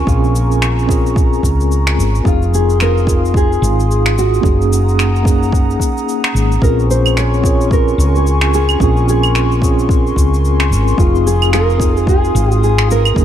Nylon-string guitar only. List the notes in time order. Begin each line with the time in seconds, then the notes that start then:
0.08 F4
2.28 F4
2.55 G#4
2.82 A#4
3.37 G#4
4.19 F#4
6.63 A#4
6.91 C5
7.18 C#5
7.73 A#4
8.07 A#4
8.17 G#4
8.55 G#4
8.83 G#4
9.10 G#4
10.99 F4
11.27 G#4
11.54 A#4
11.98 G#4
12.09 G#4
12.64 G#4
12.92 A#4